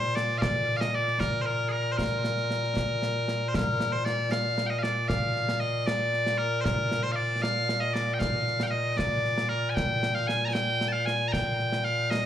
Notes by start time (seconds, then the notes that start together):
Already playing: A#2 C5
0.15 D5, snare
0.38 D5 F5
0.42 concert bass drum, snare
0.77 F5
0.81 D#5, snare
0.95 D5
1.08 snare
1.20 A#4, concert bass drum, snare
1.42 C5
1.46 A#4
1.69 G#4 A#4
1.92 C5
1.97 A#4, concert bass drum, snare
2.24 snare
2.37 snare
2.51 snare
2.64 snare
2.77 concert bass drum, snare
3.02 snare
3.28 snare
3.48 C5
3.54 A#4, concert bass drum, snare
3.80 snare
3.92 C5
4.05 D5, snare
4.31 F5, snare
4.58 snare
4.66 D#5 G5
4.79 D5 F5
4.84 snare
5.08 F5, concert bass drum, snare
5.36 snare
5.49 snare
5.60 D#5
5.86 D5, snare
6.14 snare
6.27 snare
6.38 A#4
6.61 A#4 C5
6.65 concert bass drum, snare
6.92 snare
7.03 C5
7.12 D5 F5
7.42 F5, snare
7.69 snare
7.80 D#5
7.93 D5, snare
8.14 G5
8.19 F5, concert bass drum, snare
8.47 snare
8.60 G5, snare
8.66 F5
8.71 D#5
8.97 D5, concert bass drum, snare
9.25 snare
9.38 snare
9.49 A#4
9.70 G#5
9.75 G5, concert bass drum, snare
10.03 snare
10.14 F5
10.27 G#5, snare
10.45 G#5 A#5
10.53 G5, snare
10.81 snare
10.88 F5 A5
11.06 G#5, snare
11.28 A#5
11.32 G5, concert bass drum, snare
11.59 snare
11.72 snare
11.84 F5
12.11 D#5, snare